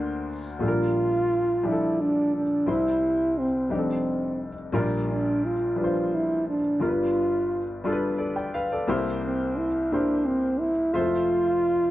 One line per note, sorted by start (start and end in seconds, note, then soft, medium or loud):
0.00 0.57 D2 medium
0.00 0.57 D3 medium
0.00 0.35 A#3 medium
0.00 0.35 D4 medium
0.00 0.39 F#4 medium
0.00 0.36 C5 medium
0.59 2.63 A#1 soft
0.59 2.63 A#2 soft
0.59 1.38 G3 medium
0.59 1.38 D4 medium
0.59 1.39 F4 medium
0.59 0.68 A4 soft
0.65 1.69 F4 loud
0.65 1.42 A#4 medium
1.63 2.42 F3 medium
1.63 2.41 G3 medium
1.63 2.42 D4 medium
1.63 1.71 G4 soft
1.68 2.03 E4 medium
1.72 2.46 A4 medium
2.02 2.35 D4 medium
2.37 2.72 D4 medium
2.66 3.67 C2 soft
2.66 3.66 C3 soft
2.66 3.45 G3 medium
2.66 3.44 C4 soft
2.66 3.45 E4 medium
2.66 3.45 C5 medium
2.71 3.40 E4 medium
3.39 3.72 C4 medium
3.69 4.70 F1 soft
3.69 4.70 F2 soft
3.69 4.48 G3 soft
3.69 4.45 C4 medium
3.69 4.48 D4 medium
3.69 4.49 D#4 medium
3.69 3.78 G4 medium
3.78 4.52 A4 medium
4.72 6.76 A#1 medium
4.72 6.76 A#2 medium
4.72 5.51 G3 medium
4.72 4.80 C#4 medium
4.72 5.51 F4 medium
4.72 5.52 A#4 medium
4.79 5.54 D4 medium
5.11 5.48 D4 medium
5.46 5.79 F4 medium
5.76 6.55 F3 soft
5.76 6.54 G3 soft
5.76 6.54 D4 soft
5.76 5.84 B4 soft
5.81 6.16 F4 medium
5.81 6.58 C5 medium
6.15 6.47 E4 medium
6.49 6.80 D4 medium
6.80 8.84 G1 soft
6.80 8.83 G2 soft
6.80 7.58 G3 medium
6.80 7.58 D4 soft
6.80 7.59 F4 medium
6.80 7.81 F4 medium
6.80 6.88 A#4 medium
6.89 7.62 B4 medium
7.84 8.62 G3 medium
7.84 8.62 D4 medium
7.84 8.63 F4 medium
7.84 7.92 A4 medium
7.92 8.23 B4 medium
8.18 8.35 A4 soft
8.18 8.35 D5 medium
8.36 8.53 D5 soft
8.36 8.52 G5 medium
8.54 8.70 B4 medium
8.54 8.70 F5 medium
8.72 9.04 A4 soft
8.72 9.04 D5 medium
8.87 10.91 C2 medium
8.87 10.91 C3 soft
8.87 9.65 A#3 medium
8.87 9.66 E4 medium
8.87 9.66 G4 medium
8.87 9.66 C5 medium
9.24 9.59 C4 medium
9.58 9.94 E4 medium
9.92 10.69 A#3 medium
9.92 10.27 D4 medium
9.92 10.69 E4 medium
9.92 10.70 G4 medium
9.92 10.70 C5 medium
10.26 10.61 C4 medium
10.60 10.95 E4 medium
10.93 11.91 F1 soft
10.93 11.91 F2 soft
10.93 11.00 G#3 soft
10.93 11.91 F4 medium
10.93 11.72 F4 medium
10.93 11.73 C5 medium
10.93 11.72 E5 medium
11.00 11.75 A3 medium